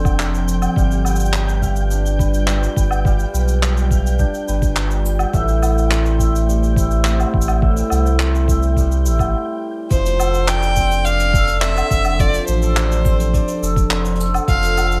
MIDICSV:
0, 0, Header, 1, 7, 480
1, 0, Start_track
1, 0, Tempo, 571429
1, 643, Time_signature, 4, 2, 24, 8
1, 12600, End_track
2, 0, Start_track
2, 0, Title_t, "Synth texture"
2, 0, Program_c, 0, 99
2, 0, Note_on_c, 0, 79, 75
2, 0, Note_on_c, 0, 91, 74
2, 7842, Note_off_c, 0, 91, 0
2, 7845, Note_off_c, 0, 79, 0
2, 12600, End_track
3, 0, Start_track
3, 0, Title_t, "Violin"
3, 0, Program_c, 1, 40
3, 8324, Note_on_c, 1, 72, 98
3, 8806, Note_on_c, 1, 79, 110
3, 8819, Note_off_c, 1, 72, 0
3, 9284, Note_on_c, 1, 77, 105
3, 9297, Note_off_c, 1, 79, 0
3, 9760, Note_off_c, 1, 77, 0
3, 9765, Note_on_c, 1, 76, 101
3, 10248, Note_on_c, 1, 74, 104
3, 10261, Note_off_c, 1, 76, 0
3, 10482, Note_off_c, 1, 74, 0
3, 10487, Note_on_c, 1, 72, 85
3, 11411, Note_off_c, 1, 72, 0
3, 12168, Note_on_c, 1, 77, 104
3, 12600, Note_off_c, 1, 77, 0
3, 12600, End_track
4, 0, Start_track
4, 0, Title_t, "Hammered dulcimer"
4, 0, Program_c, 2, 15
4, 0, Note_on_c, 2, 53, 79
4, 0, Note_on_c, 2, 60, 56
4, 0, Note_on_c, 2, 62, 67
4, 0, Note_on_c, 2, 69, 61
4, 0, Note_on_c, 2, 72, 58
4, 156, Note_off_c, 2, 60, 0
4, 159, Note_on_c, 2, 60, 53
4, 396, Note_off_c, 2, 72, 0
4, 399, Note_on_c, 2, 72, 52
4, 637, Note_on_c, 2, 55, 74
4, 644, Note_on_c, 2, 77, 65
4, 881, Note_on_c, 2, 71, 59
4, 931, Note_off_c, 2, 60, 0
4, 931, Note_off_c, 2, 72, 0
4, 1122, Note_on_c, 2, 67, 59
4, 1358, Note_off_c, 2, 77, 0
4, 1362, Note_on_c, 2, 77, 70
4, 1600, Note_off_c, 2, 62, 0
4, 1603, Note_on_c, 2, 62, 64
4, 1839, Note_off_c, 2, 71, 0
4, 1843, Note_on_c, 2, 71, 64
4, 1897, Note_off_c, 2, 69, 0
4, 2078, Note_off_c, 2, 67, 0
4, 2081, Note_on_c, 2, 67, 54
4, 2319, Note_off_c, 2, 71, 0
4, 2322, Note_on_c, 2, 71, 58
4, 2556, Note_off_c, 2, 55, 0
4, 2560, Note_on_c, 2, 55, 80
4, 2561, Note_off_c, 2, 77, 0
4, 2565, Note_on_c, 2, 77, 70
4, 2798, Note_off_c, 2, 71, 0
4, 2801, Note_on_c, 2, 71, 54
4, 3040, Note_off_c, 2, 67, 0
4, 3044, Note_on_c, 2, 67, 59
4, 3281, Note_off_c, 2, 77, 0
4, 3284, Note_on_c, 2, 77, 65
4, 3520, Note_off_c, 2, 62, 0
4, 3523, Note_on_c, 2, 62, 70
4, 3761, Note_off_c, 2, 71, 0
4, 3764, Note_on_c, 2, 71, 65
4, 4001, Note_off_c, 2, 67, 0
4, 4005, Note_on_c, 2, 67, 57
4, 4238, Note_off_c, 2, 71, 0
4, 4241, Note_on_c, 2, 71, 58
4, 4482, Note_on_c, 2, 45, 78
4, 4487, Note_on_c, 2, 76, 69
4, 4537, Note_off_c, 2, 77, 0
4, 4723, Note_on_c, 2, 64, 61
4, 4966, Note_on_c, 2, 60, 62
4, 5016, Note_off_c, 2, 71, 0
4, 5203, Note_off_c, 2, 76, 0
4, 5206, Note_on_c, 2, 76, 67
4, 5439, Note_off_c, 2, 55, 0
4, 5443, Note_on_c, 2, 55, 73
4, 5678, Note_off_c, 2, 64, 0
4, 5681, Note_on_c, 2, 64, 63
4, 5920, Note_off_c, 2, 60, 0
4, 5924, Note_on_c, 2, 60, 59
4, 6001, Note_off_c, 2, 53, 0
4, 6158, Note_off_c, 2, 64, 0
4, 6162, Note_on_c, 2, 64, 61
4, 6392, Note_off_c, 2, 45, 0
4, 6402, Note_on_c, 2, 45, 84
4, 6405, Note_off_c, 2, 76, 0
4, 6408, Note_on_c, 2, 76, 71
4, 6640, Note_off_c, 2, 64, 0
4, 6643, Note_on_c, 2, 64, 62
4, 6658, Note_off_c, 2, 62, 0
4, 6877, Note_off_c, 2, 60, 0
4, 6880, Note_on_c, 2, 60, 65
4, 7118, Note_off_c, 2, 76, 0
4, 7121, Note_on_c, 2, 76, 65
4, 7356, Note_off_c, 2, 55, 0
4, 7366, Note_on_c, 2, 55, 70
4, 7601, Note_off_c, 2, 64, 0
4, 7604, Note_on_c, 2, 64, 65
4, 8324, Note_on_c, 2, 53, 83
4, 8365, Note_off_c, 2, 45, 0
4, 8365, Note_off_c, 2, 55, 0
4, 8374, Note_off_c, 2, 64, 0
4, 8374, Note_off_c, 2, 76, 0
4, 8486, Note_off_c, 2, 67, 0
4, 8564, Note_on_c, 2, 69, 61
4, 8807, Note_on_c, 2, 74, 67
4, 9041, Note_off_c, 2, 60, 0
4, 9044, Note_on_c, 2, 60, 61
4, 9279, Note_off_c, 2, 74, 0
4, 9282, Note_on_c, 2, 74, 75
4, 9519, Note_off_c, 2, 69, 0
4, 9522, Note_on_c, 2, 69, 68
4, 9761, Note_off_c, 2, 60, 0
4, 9764, Note_on_c, 2, 60, 57
4, 10003, Note_off_c, 2, 69, 0
4, 10006, Note_on_c, 2, 69, 57
4, 10239, Note_off_c, 2, 53, 0
4, 10243, Note_on_c, 2, 53, 86
4, 10485, Note_on_c, 2, 67, 61
4, 10600, Note_off_c, 2, 69, 0
4, 10603, Note_on_c, 2, 69, 56
4, 10725, Note_off_c, 2, 74, 0
4, 10728, Note_on_c, 2, 74, 68
4, 10964, Note_off_c, 2, 60, 0
4, 10967, Note_on_c, 2, 60, 61
4, 11200, Note_off_c, 2, 74, 0
4, 11203, Note_on_c, 2, 74, 74
4, 11440, Note_off_c, 2, 69, 0
4, 11444, Note_on_c, 2, 69, 64
4, 11681, Note_off_c, 2, 60, 0
4, 11684, Note_on_c, 2, 60, 63
4, 11919, Note_off_c, 2, 69, 0
4, 11923, Note_on_c, 2, 69, 64
4, 12159, Note_off_c, 2, 53, 0
4, 12163, Note_on_c, 2, 53, 88
4, 12398, Note_off_c, 2, 69, 0
4, 12402, Note_on_c, 2, 69, 62
4, 12600, Note_off_c, 2, 53, 0
4, 12600, Note_off_c, 2, 60, 0
4, 12600, Note_off_c, 2, 67, 0
4, 12600, Note_off_c, 2, 69, 0
4, 12600, Note_off_c, 2, 74, 0
4, 12600, End_track
5, 0, Start_track
5, 0, Title_t, "Ambient pad"
5, 0, Program_c, 3, 92
5, 0, Note_on_c, 3, 53, 69
5, 0, Note_on_c, 3, 60, 72
5, 0, Note_on_c, 3, 69, 81
5, 607, Note_off_c, 3, 53, 0
5, 608, Note_off_c, 3, 69, 0
5, 614, Note_off_c, 3, 60, 0
5, 640, Note_on_c, 3, 65, 67
5, 640, Note_on_c, 3, 71, 90
5, 643, Note_on_c, 3, 55, 81
5, 4448, Note_off_c, 3, 65, 0
5, 4448, Note_off_c, 3, 71, 0
5, 4450, Note_off_c, 3, 55, 0
5, 4483, Note_on_c, 3, 67, 72
5, 4483, Note_on_c, 3, 72, 92
5, 4488, Note_on_c, 3, 57, 83
5, 6384, Note_off_c, 3, 67, 0
5, 6406, Note_on_c, 3, 69, 71
5, 7810, Note_off_c, 3, 72, 0
5, 7812, Note_off_c, 3, 57, 0
5, 7830, Note_off_c, 3, 69, 0
5, 8321, Note_on_c, 3, 53, 79
5, 8321, Note_on_c, 3, 69, 83
5, 8323, Note_on_c, 3, 62, 78
5, 12600, Note_off_c, 3, 53, 0
5, 12600, Note_off_c, 3, 62, 0
5, 12600, Note_off_c, 3, 69, 0
5, 12600, End_track
6, 0, Start_track
6, 0, Title_t, "Sub bass"
6, 0, Program_c, 4, 38
6, 0, Note_on_c, 4, 29, 96
6, 565, Note_off_c, 4, 29, 0
6, 642, Note_on_c, 4, 31, 105
6, 2248, Note_off_c, 4, 31, 0
6, 2324, Note_on_c, 4, 31, 84
6, 2730, Note_off_c, 4, 31, 0
6, 2803, Note_on_c, 4, 35, 81
6, 3569, Note_off_c, 4, 35, 0
6, 3766, Note_on_c, 4, 31, 80
6, 4411, Note_off_c, 4, 31, 0
6, 4481, Note_on_c, 4, 33, 101
6, 6088, Note_off_c, 4, 33, 0
6, 6165, Note_on_c, 4, 33, 90
6, 6570, Note_off_c, 4, 33, 0
6, 6646, Note_on_c, 4, 36, 85
6, 7609, Note_on_c, 4, 33, 105
6, 7622, Note_off_c, 4, 36, 0
6, 7846, Note_off_c, 4, 33, 0
6, 8323, Note_on_c, 4, 29, 111
6, 9929, Note_off_c, 4, 29, 0
6, 10003, Note_on_c, 4, 29, 97
6, 10409, Note_off_c, 4, 29, 0
6, 10484, Note_on_c, 4, 33, 90
6, 11249, Note_off_c, 4, 33, 0
6, 11442, Note_on_c, 4, 29, 83
6, 12088, Note_off_c, 4, 29, 0
6, 12163, Note_on_c, 4, 29, 112
6, 12600, Note_off_c, 4, 29, 0
6, 12600, End_track
7, 0, Start_track
7, 0, Title_t, "Drums"
7, 41, Note_on_c, 9, 77, 51
7, 42, Note_on_c, 9, 36, 104
7, 48, Note_on_c, 9, 82, 42
7, 125, Note_off_c, 9, 77, 0
7, 126, Note_off_c, 9, 36, 0
7, 132, Note_off_c, 9, 82, 0
7, 165, Note_on_c, 9, 39, 89
7, 174, Note_on_c, 9, 82, 50
7, 249, Note_off_c, 9, 39, 0
7, 258, Note_off_c, 9, 82, 0
7, 290, Note_on_c, 9, 82, 33
7, 374, Note_off_c, 9, 82, 0
7, 406, Note_on_c, 9, 82, 80
7, 490, Note_off_c, 9, 82, 0
7, 521, Note_on_c, 9, 77, 66
7, 522, Note_on_c, 9, 82, 45
7, 605, Note_off_c, 9, 77, 0
7, 606, Note_off_c, 9, 82, 0
7, 641, Note_on_c, 9, 36, 110
7, 654, Note_on_c, 9, 82, 48
7, 725, Note_off_c, 9, 36, 0
7, 738, Note_off_c, 9, 82, 0
7, 766, Note_on_c, 9, 82, 40
7, 850, Note_off_c, 9, 82, 0
7, 880, Note_on_c, 9, 77, 61
7, 891, Note_on_c, 9, 82, 74
7, 964, Note_off_c, 9, 77, 0
7, 972, Note_off_c, 9, 82, 0
7, 972, Note_on_c, 9, 82, 60
7, 1005, Note_off_c, 9, 82, 0
7, 1005, Note_on_c, 9, 82, 53
7, 1051, Note_off_c, 9, 82, 0
7, 1051, Note_on_c, 9, 82, 50
7, 1120, Note_on_c, 9, 39, 89
7, 1126, Note_off_c, 9, 82, 0
7, 1126, Note_on_c, 9, 82, 60
7, 1204, Note_off_c, 9, 39, 0
7, 1210, Note_off_c, 9, 82, 0
7, 1250, Note_on_c, 9, 82, 42
7, 1334, Note_off_c, 9, 82, 0
7, 1361, Note_on_c, 9, 36, 55
7, 1367, Note_on_c, 9, 82, 76
7, 1445, Note_off_c, 9, 36, 0
7, 1451, Note_off_c, 9, 82, 0
7, 1477, Note_on_c, 9, 82, 55
7, 1561, Note_off_c, 9, 82, 0
7, 1602, Note_on_c, 9, 82, 56
7, 1686, Note_off_c, 9, 82, 0
7, 1730, Note_on_c, 9, 82, 42
7, 1814, Note_off_c, 9, 82, 0
7, 1842, Note_on_c, 9, 36, 93
7, 1850, Note_on_c, 9, 82, 74
7, 1926, Note_off_c, 9, 36, 0
7, 1934, Note_off_c, 9, 82, 0
7, 1965, Note_on_c, 9, 82, 47
7, 2049, Note_off_c, 9, 82, 0
7, 2080, Note_on_c, 9, 39, 86
7, 2091, Note_on_c, 9, 82, 52
7, 2164, Note_off_c, 9, 39, 0
7, 2175, Note_off_c, 9, 82, 0
7, 2211, Note_on_c, 9, 82, 38
7, 2295, Note_off_c, 9, 82, 0
7, 2322, Note_on_c, 9, 36, 97
7, 2331, Note_on_c, 9, 82, 83
7, 2406, Note_off_c, 9, 36, 0
7, 2415, Note_off_c, 9, 82, 0
7, 2442, Note_on_c, 9, 77, 73
7, 2453, Note_on_c, 9, 82, 50
7, 2526, Note_off_c, 9, 77, 0
7, 2537, Note_off_c, 9, 82, 0
7, 2562, Note_on_c, 9, 36, 109
7, 2572, Note_on_c, 9, 82, 50
7, 2646, Note_off_c, 9, 36, 0
7, 2656, Note_off_c, 9, 82, 0
7, 2682, Note_on_c, 9, 82, 39
7, 2766, Note_off_c, 9, 82, 0
7, 2811, Note_on_c, 9, 82, 88
7, 2895, Note_off_c, 9, 82, 0
7, 2925, Note_on_c, 9, 82, 50
7, 3009, Note_off_c, 9, 82, 0
7, 3049, Note_on_c, 9, 39, 83
7, 3049, Note_on_c, 9, 82, 51
7, 3133, Note_off_c, 9, 39, 0
7, 3133, Note_off_c, 9, 82, 0
7, 3168, Note_on_c, 9, 82, 40
7, 3252, Note_off_c, 9, 82, 0
7, 3282, Note_on_c, 9, 36, 85
7, 3289, Note_on_c, 9, 82, 74
7, 3366, Note_off_c, 9, 36, 0
7, 3373, Note_off_c, 9, 82, 0
7, 3415, Note_on_c, 9, 82, 49
7, 3499, Note_off_c, 9, 82, 0
7, 3519, Note_on_c, 9, 82, 57
7, 3522, Note_on_c, 9, 36, 54
7, 3603, Note_off_c, 9, 82, 0
7, 3606, Note_off_c, 9, 36, 0
7, 3647, Note_on_c, 9, 82, 36
7, 3731, Note_off_c, 9, 82, 0
7, 3765, Note_on_c, 9, 82, 76
7, 3849, Note_off_c, 9, 82, 0
7, 3881, Note_on_c, 9, 36, 86
7, 3885, Note_on_c, 9, 82, 48
7, 3965, Note_off_c, 9, 36, 0
7, 3969, Note_off_c, 9, 82, 0
7, 3998, Note_on_c, 9, 82, 49
7, 4002, Note_on_c, 9, 39, 91
7, 4082, Note_off_c, 9, 82, 0
7, 4086, Note_off_c, 9, 39, 0
7, 4122, Note_on_c, 9, 82, 40
7, 4206, Note_off_c, 9, 82, 0
7, 4247, Note_on_c, 9, 82, 84
7, 4331, Note_off_c, 9, 82, 0
7, 4361, Note_on_c, 9, 77, 81
7, 4365, Note_on_c, 9, 82, 43
7, 4445, Note_off_c, 9, 77, 0
7, 4449, Note_off_c, 9, 82, 0
7, 4481, Note_on_c, 9, 36, 107
7, 4484, Note_on_c, 9, 82, 56
7, 4565, Note_off_c, 9, 36, 0
7, 4568, Note_off_c, 9, 82, 0
7, 4603, Note_on_c, 9, 82, 46
7, 4687, Note_off_c, 9, 82, 0
7, 4725, Note_on_c, 9, 77, 67
7, 4729, Note_on_c, 9, 82, 87
7, 4809, Note_off_c, 9, 77, 0
7, 4813, Note_off_c, 9, 82, 0
7, 4855, Note_on_c, 9, 82, 53
7, 4939, Note_off_c, 9, 82, 0
7, 4967, Note_on_c, 9, 39, 94
7, 4972, Note_on_c, 9, 82, 56
7, 5051, Note_off_c, 9, 39, 0
7, 5056, Note_off_c, 9, 82, 0
7, 5086, Note_on_c, 9, 82, 36
7, 5170, Note_off_c, 9, 82, 0
7, 5202, Note_on_c, 9, 36, 52
7, 5210, Note_on_c, 9, 82, 77
7, 5286, Note_off_c, 9, 36, 0
7, 5294, Note_off_c, 9, 82, 0
7, 5339, Note_on_c, 9, 82, 51
7, 5423, Note_off_c, 9, 82, 0
7, 5456, Note_on_c, 9, 82, 59
7, 5540, Note_off_c, 9, 82, 0
7, 5572, Note_on_c, 9, 82, 37
7, 5656, Note_off_c, 9, 82, 0
7, 5682, Note_on_c, 9, 36, 101
7, 5691, Note_on_c, 9, 82, 74
7, 5766, Note_off_c, 9, 36, 0
7, 5775, Note_off_c, 9, 82, 0
7, 5802, Note_on_c, 9, 82, 45
7, 5886, Note_off_c, 9, 82, 0
7, 5919, Note_on_c, 9, 39, 91
7, 5928, Note_on_c, 9, 82, 51
7, 6003, Note_off_c, 9, 39, 0
7, 6012, Note_off_c, 9, 82, 0
7, 6045, Note_on_c, 9, 77, 66
7, 6047, Note_on_c, 9, 82, 35
7, 6129, Note_off_c, 9, 77, 0
7, 6131, Note_off_c, 9, 82, 0
7, 6163, Note_on_c, 9, 36, 93
7, 6228, Note_on_c, 9, 82, 83
7, 6247, Note_off_c, 9, 36, 0
7, 6285, Note_on_c, 9, 77, 72
7, 6287, Note_off_c, 9, 82, 0
7, 6287, Note_on_c, 9, 82, 45
7, 6369, Note_off_c, 9, 77, 0
7, 6371, Note_off_c, 9, 82, 0
7, 6403, Note_on_c, 9, 36, 110
7, 6487, Note_off_c, 9, 36, 0
7, 6526, Note_on_c, 9, 82, 60
7, 6610, Note_off_c, 9, 82, 0
7, 6638, Note_on_c, 9, 77, 66
7, 6653, Note_on_c, 9, 82, 83
7, 6722, Note_off_c, 9, 77, 0
7, 6737, Note_off_c, 9, 82, 0
7, 6772, Note_on_c, 9, 82, 53
7, 6856, Note_off_c, 9, 82, 0
7, 6885, Note_on_c, 9, 39, 97
7, 6893, Note_on_c, 9, 82, 52
7, 6969, Note_off_c, 9, 39, 0
7, 6977, Note_off_c, 9, 82, 0
7, 7015, Note_on_c, 9, 82, 34
7, 7099, Note_off_c, 9, 82, 0
7, 7123, Note_on_c, 9, 36, 88
7, 7132, Note_on_c, 9, 82, 78
7, 7207, Note_off_c, 9, 36, 0
7, 7216, Note_off_c, 9, 82, 0
7, 7245, Note_on_c, 9, 82, 52
7, 7329, Note_off_c, 9, 82, 0
7, 7363, Note_on_c, 9, 36, 54
7, 7371, Note_on_c, 9, 82, 52
7, 7447, Note_off_c, 9, 36, 0
7, 7455, Note_off_c, 9, 82, 0
7, 7491, Note_on_c, 9, 82, 43
7, 7575, Note_off_c, 9, 82, 0
7, 7608, Note_on_c, 9, 82, 82
7, 7692, Note_off_c, 9, 82, 0
7, 7722, Note_on_c, 9, 36, 89
7, 7727, Note_on_c, 9, 77, 53
7, 7729, Note_on_c, 9, 82, 49
7, 7806, Note_off_c, 9, 36, 0
7, 7811, Note_off_c, 9, 77, 0
7, 7813, Note_off_c, 9, 82, 0
7, 8317, Note_on_c, 9, 42, 74
7, 8322, Note_on_c, 9, 36, 114
7, 8327, Note_on_c, 9, 82, 55
7, 8401, Note_off_c, 9, 42, 0
7, 8406, Note_off_c, 9, 36, 0
7, 8411, Note_off_c, 9, 82, 0
7, 8449, Note_on_c, 9, 82, 52
7, 8452, Note_on_c, 9, 42, 68
7, 8533, Note_off_c, 9, 82, 0
7, 8536, Note_off_c, 9, 42, 0
7, 8565, Note_on_c, 9, 77, 65
7, 8569, Note_on_c, 9, 82, 88
7, 8649, Note_off_c, 9, 77, 0
7, 8653, Note_off_c, 9, 82, 0
7, 8686, Note_on_c, 9, 82, 57
7, 8770, Note_off_c, 9, 82, 0
7, 8802, Note_on_c, 9, 42, 81
7, 8805, Note_on_c, 9, 39, 113
7, 8813, Note_on_c, 9, 82, 58
7, 8886, Note_off_c, 9, 42, 0
7, 8889, Note_off_c, 9, 39, 0
7, 8897, Note_off_c, 9, 82, 0
7, 8922, Note_on_c, 9, 42, 59
7, 8926, Note_on_c, 9, 82, 50
7, 9006, Note_off_c, 9, 42, 0
7, 9010, Note_off_c, 9, 82, 0
7, 9040, Note_on_c, 9, 82, 84
7, 9042, Note_on_c, 9, 36, 58
7, 9124, Note_off_c, 9, 82, 0
7, 9126, Note_off_c, 9, 36, 0
7, 9167, Note_on_c, 9, 82, 47
7, 9170, Note_on_c, 9, 42, 49
7, 9251, Note_off_c, 9, 82, 0
7, 9254, Note_off_c, 9, 42, 0
7, 9279, Note_on_c, 9, 42, 79
7, 9292, Note_on_c, 9, 82, 64
7, 9363, Note_off_c, 9, 42, 0
7, 9376, Note_off_c, 9, 82, 0
7, 9403, Note_on_c, 9, 42, 68
7, 9408, Note_on_c, 9, 82, 49
7, 9487, Note_off_c, 9, 42, 0
7, 9492, Note_off_c, 9, 82, 0
7, 9521, Note_on_c, 9, 36, 115
7, 9533, Note_on_c, 9, 82, 81
7, 9605, Note_off_c, 9, 36, 0
7, 9617, Note_off_c, 9, 82, 0
7, 9637, Note_on_c, 9, 42, 51
7, 9649, Note_on_c, 9, 82, 46
7, 9721, Note_off_c, 9, 42, 0
7, 9733, Note_off_c, 9, 82, 0
7, 9753, Note_on_c, 9, 42, 86
7, 9760, Note_on_c, 9, 39, 100
7, 9767, Note_on_c, 9, 82, 58
7, 9837, Note_off_c, 9, 42, 0
7, 9844, Note_off_c, 9, 39, 0
7, 9851, Note_off_c, 9, 82, 0
7, 9878, Note_on_c, 9, 42, 52
7, 9891, Note_on_c, 9, 77, 74
7, 9892, Note_on_c, 9, 82, 49
7, 9962, Note_off_c, 9, 42, 0
7, 9975, Note_off_c, 9, 77, 0
7, 9976, Note_off_c, 9, 82, 0
7, 10001, Note_on_c, 9, 36, 98
7, 10006, Note_on_c, 9, 82, 83
7, 10085, Note_off_c, 9, 36, 0
7, 10090, Note_off_c, 9, 82, 0
7, 10120, Note_on_c, 9, 77, 76
7, 10120, Note_on_c, 9, 82, 50
7, 10125, Note_on_c, 9, 42, 49
7, 10204, Note_off_c, 9, 77, 0
7, 10204, Note_off_c, 9, 82, 0
7, 10209, Note_off_c, 9, 42, 0
7, 10242, Note_on_c, 9, 36, 120
7, 10244, Note_on_c, 9, 42, 74
7, 10246, Note_on_c, 9, 82, 59
7, 10326, Note_off_c, 9, 36, 0
7, 10328, Note_off_c, 9, 42, 0
7, 10330, Note_off_c, 9, 82, 0
7, 10364, Note_on_c, 9, 82, 50
7, 10369, Note_on_c, 9, 42, 71
7, 10448, Note_off_c, 9, 82, 0
7, 10453, Note_off_c, 9, 42, 0
7, 10479, Note_on_c, 9, 82, 105
7, 10563, Note_off_c, 9, 82, 0
7, 10603, Note_on_c, 9, 82, 51
7, 10687, Note_off_c, 9, 82, 0
7, 10723, Note_on_c, 9, 82, 63
7, 10725, Note_on_c, 9, 39, 109
7, 10727, Note_on_c, 9, 42, 71
7, 10807, Note_off_c, 9, 82, 0
7, 10809, Note_off_c, 9, 39, 0
7, 10811, Note_off_c, 9, 42, 0
7, 10848, Note_on_c, 9, 42, 55
7, 10850, Note_on_c, 9, 82, 49
7, 10932, Note_off_c, 9, 42, 0
7, 10934, Note_off_c, 9, 82, 0
7, 10963, Note_on_c, 9, 36, 100
7, 10965, Note_on_c, 9, 82, 83
7, 11047, Note_off_c, 9, 36, 0
7, 11049, Note_off_c, 9, 82, 0
7, 11085, Note_on_c, 9, 42, 55
7, 11091, Note_on_c, 9, 82, 48
7, 11169, Note_off_c, 9, 42, 0
7, 11175, Note_off_c, 9, 82, 0
7, 11202, Note_on_c, 9, 36, 63
7, 11206, Note_on_c, 9, 42, 70
7, 11208, Note_on_c, 9, 82, 57
7, 11286, Note_off_c, 9, 36, 0
7, 11290, Note_off_c, 9, 42, 0
7, 11292, Note_off_c, 9, 82, 0
7, 11320, Note_on_c, 9, 42, 56
7, 11326, Note_on_c, 9, 82, 51
7, 11404, Note_off_c, 9, 42, 0
7, 11410, Note_off_c, 9, 82, 0
7, 11453, Note_on_c, 9, 82, 87
7, 11537, Note_off_c, 9, 82, 0
7, 11561, Note_on_c, 9, 36, 99
7, 11561, Note_on_c, 9, 42, 47
7, 11571, Note_on_c, 9, 82, 49
7, 11645, Note_off_c, 9, 36, 0
7, 11645, Note_off_c, 9, 42, 0
7, 11655, Note_off_c, 9, 82, 0
7, 11682, Note_on_c, 9, 39, 100
7, 11684, Note_on_c, 9, 42, 73
7, 11686, Note_on_c, 9, 82, 57
7, 11766, Note_off_c, 9, 39, 0
7, 11768, Note_off_c, 9, 42, 0
7, 11770, Note_off_c, 9, 82, 0
7, 11803, Note_on_c, 9, 82, 52
7, 11807, Note_on_c, 9, 42, 53
7, 11887, Note_off_c, 9, 82, 0
7, 11888, Note_off_c, 9, 42, 0
7, 11888, Note_on_c, 9, 42, 47
7, 11931, Note_on_c, 9, 82, 80
7, 11971, Note_off_c, 9, 42, 0
7, 11971, Note_on_c, 9, 42, 36
7, 12015, Note_off_c, 9, 82, 0
7, 12044, Note_off_c, 9, 42, 0
7, 12044, Note_on_c, 9, 42, 42
7, 12049, Note_on_c, 9, 77, 78
7, 12059, Note_on_c, 9, 82, 47
7, 12128, Note_off_c, 9, 42, 0
7, 12133, Note_off_c, 9, 77, 0
7, 12143, Note_off_c, 9, 82, 0
7, 12161, Note_on_c, 9, 36, 123
7, 12161, Note_on_c, 9, 42, 73
7, 12169, Note_on_c, 9, 82, 57
7, 12245, Note_off_c, 9, 36, 0
7, 12245, Note_off_c, 9, 42, 0
7, 12253, Note_off_c, 9, 82, 0
7, 12283, Note_on_c, 9, 42, 61
7, 12300, Note_on_c, 9, 82, 54
7, 12367, Note_off_c, 9, 42, 0
7, 12384, Note_off_c, 9, 82, 0
7, 12411, Note_on_c, 9, 82, 95
7, 12412, Note_on_c, 9, 77, 66
7, 12495, Note_off_c, 9, 82, 0
7, 12496, Note_off_c, 9, 77, 0
7, 12529, Note_on_c, 9, 82, 52
7, 12600, Note_off_c, 9, 82, 0
7, 12600, End_track
0, 0, End_of_file